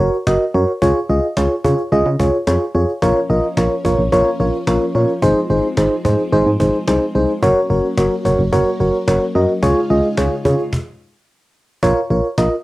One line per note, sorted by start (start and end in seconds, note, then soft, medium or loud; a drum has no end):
0.00 0.17 F#4 medium
0.00 0.17 A#4 medium
0.00 0.17 C#5 loud
0.14 cajon slap soft
0.27 0.37 F#1 loud
0.27 0.45 F#4 medium
0.27 0.45 A#4 medium
0.27 0.45 D#5 loud
0.27 cajon slap loud
0.54 0.65 F#2 loud
0.54 0.72 F#4 medium
0.54 0.72 A#4 medium
0.54 0.72 C#5 loud
0.68 cajon slap soft
0.82 0.92 C#2 loud
0.82 1.00 F4 loud
0.82 1.00 G#4 loud
0.82 1.00 C#5 loud
0.82 cajon bass loud
1.09 1.20 C#2 loud
1.09 1.27 F4 medium
1.09 1.27 G#4 medium
1.09 1.27 D#5 medium
1.09 cajon slap soft
1.23 cajon slap soft
1.37 1.47 C#2 loud
1.37 1.55 F4 medium
1.37 1.55 G#4 medium
1.37 1.55 C#5 loud
1.37 cajon slap loud
1.65 1.75 C#3 loud
1.65 1.82 F4 medium
1.65 1.82 G#4 medium
1.65 1.82 C#5 loud
1.65 cajon bass medium
1.78 cajon slap soft
1.92 2.02 C#2 loud
1.92 2.10 F4 loud
1.92 2.10 G#4 loud
1.92 2.10 D#5 loud
1.92 cajon slap soft
2.06 2.16 C#3 loud
2.20 2.30 C#2 loud
2.20 2.37 F4 medium
2.20 2.37 G#4 medium
2.20 2.37 C#5 medium
2.20 cajon bass loud
2.34 cajon slap soft
2.47 2.57 F2 medium
2.47 2.65 F4 medium
2.47 2.65 G#4 medium
2.47 2.65 C#5 loud
2.47 cajon slap loud
2.75 2.85 F2 medium
2.75 2.92 F4 medium
2.75 2.92 G#4 medium
2.75 2.92 C#5 loud
2.88 cajon slap soft
3.02 3.12 A#1 loud
3.02 7.39 F3 medium
3.02 5.20 A#3 medium
3.02 5.20 C#4 medium
3.02 3.20 F4 loud
3.02 3.20 A#4 loud
3.02 3.20 C#5 loud
3.02 cajon bass loud
3.30 3.40 A#1 loud
3.30 3.47 F4 medium
3.30 3.47 A#4 medium
3.30 3.47 D#5 loud
3.30 cajon slap soft
3.44 cajon slap soft
3.57 3.67 A#1 loud
3.57 3.75 F4 medium
3.57 3.75 A#4 medium
3.57 3.75 C#5 loud
3.57 cajon slap loud
3.85 3.95 A#1 loud
3.85 4.02 F4 medium
3.85 4.02 A#4 medium
3.85 4.02 C#5 loud
3.85 cajon bass medium
3.99 4.09 A#1 loud
4.12 4.22 A#1 loud
4.12 4.30 F4 loud
4.12 4.30 A#4 loud
4.12 4.30 C#5 loud
4.12 cajon bass medium
4.40 4.50 A#1 loud
4.40 4.57 F4 medium
4.40 4.57 A#4 medium
4.40 4.57 C#5 loud
4.40 cajon slap soft
4.54 cajon slap soft
4.67 4.78 A#1 loud
4.67 4.85 F4 medium
4.67 4.85 A#4 medium
4.67 4.85 C#5 loud
4.67 cajon slap loud
4.95 5.05 A#2 medium
4.95 5.13 F4 medium
4.95 5.13 A#4 medium
4.95 5.13 C#5 medium
5.08 cajon slap soft
5.22 5.33 G#1 loud
5.22 7.40 G#3 medium
5.22 7.40 C4 medium
5.22 5.40 D#4 loud
5.22 5.40 G#4 loud
5.22 5.40 C5 loud
5.22 cajon bass loud
5.50 5.60 G#1 loud
5.50 5.68 D#4 medium
5.50 5.68 G#4 medium
5.50 5.68 C5 medium
5.50 cajon slap soft
5.64 cajon slap soft
5.77 5.88 G#1 loud
5.77 5.95 D#4 medium
5.77 5.95 G#4 medium
5.77 5.95 C5 medium
5.77 cajon slap loud
6.05 6.15 G#2 loud
6.05 6.23 D#4 medium
6.05 6.23 G#4 medium
6.05 6.23 C5 medium
6.05 cajon bass medium
6.19 cajon slap soft
6.32 6.43 G#1 loud
6.32 6.50 D#4 loud
6.32 6.50 G#4 loud
6.32 6.50 C5 loud
6.32 cajon slap soft
6.46 6.56 G#2 loud
6.60 6.70 G#1 loud
6.60 6.78 D#4 medium
6.60 6.78 G#4 medium
6.60 6.78 C5 loud
6.60 cajon bass loud
6.74 cajon slap soft
6.87 6.98 C2 loud
6.87 7.05 D#4 medium
6.87 7.05 G#4 medium
6.87 7.05 C5 medium
6.87 cajon slap loud
7.15 7.25 C2 medium
7.15 7.33 D#4 medium
7.15 7.33 G#4 medium
7.15 7.33 C5 medium
7.29 cajon slap soft
7.43 7.53 F#1 loud
7.43 9.61 F#3 medium
7.43 9.61 A#3 medium
7.43 9.61 C#4 medium
7.43 7.60 F#4 loud
7.43 7.60 A#4 loud
7.43 7.60 C#5 loud
7.43 cajon bass loud
7.70 7.80 F#1 loud
7.70 7.88 F#4 medium
7.70 7.88 A#4 medium
7.70 7.88 C#5 medium
7.70 cajon slap soft
7.84 cajon slap soft
7.97 8.08 F#1 loud
7.97 8.15 F#4 medium
7.97 8.15 A#4 medium
7.97 8.15 C#5 medium
7.97 cajon slap loud
8.25 8.35 F#1 loud
8.25 8.43 F#4 medium
8.25 8.43 A#4 medium
8.25 8.43 C#5 loud
8.25 cajon bass medium
8.39 8.49 F#1 loud
8.39 cajon slap soft
8.53 8.63 F#1 loud
8.53 8.70 F#4 loud
8.53 8.70 A#4 loud
8.53 8.70 C#5 loud
8.53 cajon bass loud
8.80 8.90 F#1 medium
8.80 8.98 F#4 medium
8.80 8.98 A#4 medium
8.80 8.98 C#5 medium
8.80 cajon slap soft
8.94 cajon slap soft
9.08 9.18 F#1 loud
9.08 9.25 F#4 medium
9.08 9.25 A#4 medium
9.08 9.25 C#5 loud
9.08 cajon slap loud
9.35 9.45 F#2 loud
9.35 9.53 F#4 medium
9.35 9.53 A#4 medium
9.35 9.53 D#5 medium
9.49 cajon slap soft
9.63 9.73 C#2 loud
9.63 10.72 C#3 medium
9.63 10.72 G#3 medium
9.63 10.72 D#4 medium
9.63 10.72 F4 medium
9.63 9.80 F4 loud
9.63 9.80 G#4 loud
9.63 9.80 C#5 loud
9.63 cajon bass loud
9.90 10.00 C#2 loud
9.90 10.08 F4 medium
9.90 10.08 G#4 medium
9.90 10.08 D#5 medium
9.90 cajon slap soft
10.04 cajon slap soft
10.17 10.28 C#2 loud
10.17 10.35 F4 medium
10.17 10.35 G#4 medium
10.17 10.35 C#5 loud
10.17 cajon slap loud
10.45 10.55 C#3 loud
10.45 10.63 F4 medium
10.45 10.63 G#4 medium
10.45 10.63 C#5 medium
10.45 cajon bass medium
10.59 cajon slap soft
10.73 cajon bass loud
10.73 cajon slap medium
11.83 11.93 A#1 loud
11.83 12.00 F4 loud
11.83 12.00 A#4 loud
11.83 12.00 C#5 loud
11.83 cajon bass loud
12.10 12.21 A#1 loud
12.10 12.28 F4 medium
12.10 12.28 A#4 medium
12.10 12.28 C#5 medium
12.10 cajon slap soft
12.24 cajon slap soft
12.38 12.48 A#1 loud
12.38 12.56 F4 medium
12.38 12.56 A#4 medium
12.38 12.56 D#5 loud
12.38 cajon slap loud